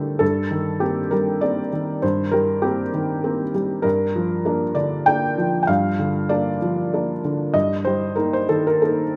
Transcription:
0.00 0.16 G2 soft
0.00 0.24 D3 soft
0.00 0.24 G3 soft
0.00 0.24 A3 soft
0.00 0.23 D4 soft
0.00 0.24 G4 medium
0.00 0.19 A4 medium
0.00 0.23 A#4 medium
0.00 0.23 C5 medium
0.19 1.98 G2 soft
0.19 0.80 A4 medium
0.51 0.99 D#3 soft
0.80 1.08 A#3 soft
0.80 1.09 C4 soft
0.80 1.11 G4 medium
1.11 1.60 G3 soft
1.11 1.41 A#4 medium
1.41 1.69 A#3 soft
1.41 1.69 C4 soft
1.41 2.02 D5 medium
1.73 2.21 D#3 soft
2.02 3.80 G2 soft
2.02 2.33 C5 medium
2.32 2.81 G3 soft
2.32 2.62 A#4 medium
2.62 2.90 A#3 soft
2.62 2.90 C4 soft
2.62 3.53 G4 medium
2.94 3.42 D#3 soft
3.24 3.51 A#3 soft
3.24 3.51 C4 soft
3.54 3.84 G3 soft
3.82 5.64 G2 soft
3.82 4.75 A#4 medium
4.16 4.64 F3 soft
4.45 4.73 A#3 soft
4.45 4.73 D4 soft
4.75 5.25 D3 soft
4.75 5.06 D5 medium
5.06 5.35 A#3 soft
5.06 5.35 D4 soft
5.06 5.61 G5 medium
5.38 5.87 F3 soft
5.63 5.69 G5 medium
5.67 7.50 G2 medium
5.67 6.30 F5 medium
5.99 6.49 D3 soft
6.29 6.58 A#3 soft
6.29 6.58 D4 soft
6.29 7.54 D5 medium
6.62 7.11 F3 soft
6.94 7.21 A#3 soft
6.94 7.21 D4 soft
7.25 7.55 D3 soft
7.54 9.16 G2 soft
7.54 7.85 D#5 medium
7.85 8.36 G3 soft
7.85 8.16 C5 medium
8.16 8.45 A#3 soft
8.16 8.45 D#4 soft
8.16 8.32 A#4 medium
8.33 8.49 C5 medium
8.49 9.02 D#3 soft
8.49 8.65 A4 medium
8.67 8.82 A#4 medium
8.82 9.12 A#3 soft
8.82 9.12 D#4 soft
8.82 9.16 A4 medium

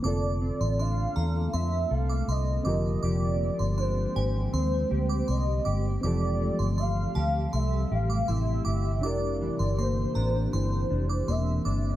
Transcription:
0.00 0.12 E3 medium
0.00 0.41 A#3 medium
0.00 2.62 C4 medium
0.00 0.45 D4 medium
0.00 0.40 D6 medium
0.04 0.49 F1 loud
0.04 2.62 D3 medium
0.04 6.00 D3 medium
0.04 2.64 A3 medium
0.04 6.00 A#3 medium
0.04 2.64 C4 medium
0.04 2.64 F4 medium
0.04 2.63 F4 medium
0.04 1.15 A4 medium
0.04 2.64 A4 medium
0.04 0.82 D5 medium
0.42 1.53 C4 medium
0.61 1.06 A1 medium
0.61 0.78 C6 medium
0.79 3.44 D4 medium
0.79 1.54 F5 medium
0.79 1.15 C6 medium
1.16 1.47 E2 medium
1.16 1.90 A4 medium
1.16 1.34 A#5 medium
1.53 1.84 F2 medium
1.53 3.40 C4 medium
1.53 1.94 E5 medium
1.53 1.71 C6 medium
1.91 2.21 C2 medium
1.91 2.74 A4 medium
1.91 2.32 F5 medium
2.09 2.28 D6 medium
2.28 2.58 C2 medium
2.28 3.07 D#5 medium
2.28 2.47 C6 medium
2.64 2.96 F1 medium
2.64 5.62 D3 medium
2.64 3.03 F3 medium
2.64 6.00 G#3 medium
2.64 5.61 C4 medium
2.64 6.00 C4 medium
2.64 11.96 G4 medium
2.64 5.62 G4 medium
2.64 2.83 D6 medium
2.69 5.63 A#4 medium
3.03 3.49 F1 loud
3.03 6.03 F3 medium
3.03 4.15 G4 medium
3.03 3.81 D5 loud
3.03 3.39 D6 medium
3.41 4.52 C4 medium
3.59 4.05 G1 loud
3.59 3.76 C6 medium
3.78 5.28 D4 medium
3.78 4.54 C5 medium
3.78 4.14 C6 medium
4.16 4.46 G#1 medium
4.16 4.91 G4 medium
4.16 4.34 G#5 medium
4.53 4.84 D#2 loud
4.53 6.40 C4 medium
4.53 5.31 C5 loud
4.53 4.71 C6 medium
4.91 5.21 D2 loud
4.91 5.65 G4 medium
5.09 5.27 D6 medium
5.28 5.59 C2 medium
5.28 5.85 D#5 medium
5.28 5.46 C6 medium
5.65 5.96 G1 loud
5.65 6.04 G4 medium
5.65 5.83 D6 medium
6.01 6.49 F1 loud
6.01 11.96 C3 medium
6.01 8.99 E3 medium
6.01 9.03 F3 medium
6.01 9.00 G3 medium
6.01 9.00 A3 medium
6.01 8.98 C4 medium
6.01 9.00 C4 medium
6.01 7.15 G4 medium
6.01 9.00 G4 medium
6.01 6.81 D5 loud
6.01 6.39 D6 medium
6.06 9.01 A4 medium
6.41 7.53 A3 medium
6.59 7.05 G1 medium
6.59 6.77 C6 medium
6.78 7.57 F5 loud
6.78 7.14 C6 medium
7.15 7.46 D2 medium
7.15 7.91 G4 medium
7.15 7.33 A5 medium
7.53 7.84 C2 loud
7.53 9.11 A3 medium
7.53 7.94 E5 loud
7.53 7.71 C6 medium
7.91 8.21 A1 medium
7.91 8.65 G4 medium
7.91 8.31 F5 loud
8.10 8.27 D6 medium
8.28 8.58 A1 medium
8.28 9.03 E4 medium
8.28 9.07 E5 loud
8.28 8.46 C6 medium
8.65 9.04 G1 medium
8.65 11.96 G4 medium
8.65 8.83 D6 medium
9.01 9.48 F1 loud
9.01 11.96 E3 medium
9.01 11.96 C4 medium
9.01 11.96 D4 medium
9.01 10.15 D4 medium
9.01 11.96 E4 medium
9.01 11.96 G4 medium
9.01 9.39 D6 medium
9.05 11.96 A#4 medium
9.05 9.82 D5 loud
9.41 10.51 E3 medium
9.59 10.05 G1 medium
9.59 9.77 C6 medium
9.78 11.27 A#3 medium
9.78 10.54 C5 loud
9.78 10.14 C6 medium
10.15 10.46 A1 medium
10.15 10.90 D4 medium
10.15 10.33 A#5 medium
10.53 10.83 G1 medium
10.53 11.96 E3 medium
10.53 11.31 C5 loud
10.53 10.71 C6 medium
10.90 11.21 F1 loud
10.90 11.65 D4 medium
11.09 11.27 D6 medium
11.28 11.58 E1 medium
11.28 11.96 A#3 medium
11.28 11.85 E5 medium
11.28 11.46 C6 medium
11.65 11.96 G1 medium
11.65 11.96 D4 medium
11.65 11.83 D6 medium

